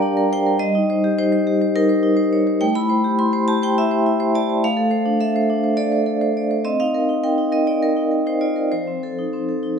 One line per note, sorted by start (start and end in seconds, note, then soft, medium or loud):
0.00 0.56 G3 medium
0.00 0.02 D4 medium
0.00 0.26 D4 medium
0.00 0.63 G4 medium
0.00 0.17 A#4 medium
0.00 0.32 D5 loud
0.00 0.62 F5 loud
0.00 0.33 G5 loud
0.00 0.63 A5 loud
0.00 0.62 A#5 loud
0.17 0.40 A#4 medium
0.32 0.46 C5 medium
0.32 0.61 G5 loud
0.46 0.61 A#4 medium
0.59 2.57 G3 medium
0.59 1.18 D#5 loud
0.75 0.98 D#4 medium
0.90 1.13 C5 medium
1.04 1.27 G4 medium
1.18 1.41 D#4 medium
1.18 1.31 C5 loud
1.32 1.55 C5 medium
1.47 1.70 G4 medium
1.62 1.84 C5 medium
1.76 1.99 D#4 medium
1.76 2.62 A#4 loud
1.89 2.12 C5 medium
2.03 2.26 D#4 medium
2.17 2.40 C5 medium
2.33 2.47 C#5 medium
2.47 2.62 C5 medium
2.61 4.60 A3 loud
2.61 2.76 G5 loud
2.75 2.99 E4 medium
2.75 3.19 B5 loud
2.90 3.13 C5 medium
3.04 3.28 G4 medium
3.19 3.42 E4 medium
3.19 3.48 C6 loud
3.33 3.56 C5 medium
3.48 3.71 G4 medium
3.48 3.62 A5 loud
3.63 3.86 C5 medium
3.63 3.77 G5 loud
3.78 4.01 E4 medium
3.78 4.35 E5 loud
3.91 4.15 C5 medium
4.06 4.29 E4 medium
4.20 4.43 C5 medium
4.35 4.49 D5 medium
4.35 4.64 A5 loud
4.50 4.64 C5 medium
4.64 6.62 A3 medium
4.64 5.22 F5 loud
4.77 5.01 A4 medium
4.91 5.15 C5 medium
5.05 5.30 D4 medium
5.20 5.44 A4 medium
5.20 5.79 E5 loud
5.36 5.59 C5 medium
5.50 5.74 D4 medium
5.64 5.88 C5 medium
5.77 6.02 A4 medium
5.77 6.36 D5 loud
5.92 6.16 C5 medium
6.06 6.30 A4 medium
6.21 6.45 C5 medium
6.37 6.51 D5 medium
6.51 6.66 C5 medium
6.65 8.67 C4 medium
6.65 6.80 D#5 loud
6.80 7.04 D#4 medium
6.80 7.24 F5 loud
6.94 7.18 A#4 medium
7.09 7.33 D#4 medium
7.24 7.47 A#4 medium
7.24 7.53 G5 medium
7.38 7.62 D#4 medium
7.52 7.76 A#4 medium
7.52 7.67 D#5 medium
7.67 7.91 D#4 medium
7.67 7.82 D5 medium
7.83 8.10 A#4 medium
7.96 8.20 D#4 medium
8.11 8.35 A#4 soft
8.26 8.51 D#4 medium
8.26 8.42 C5 medium
8.41 8.56 F4 soft
8.41 8.71 D5 medium
8.56 8.71 A#4 soft
8.72 9.79 F3 medium
8.72 9.79 C5 medium
8.87 9.11 C4 soft
9.03 9.27 A4 soft
9.19 9.42 D#4 soft
9.33 9.57 C4 soft
9.49 9.72 A4 soft
9.63 9.79 D#4 soft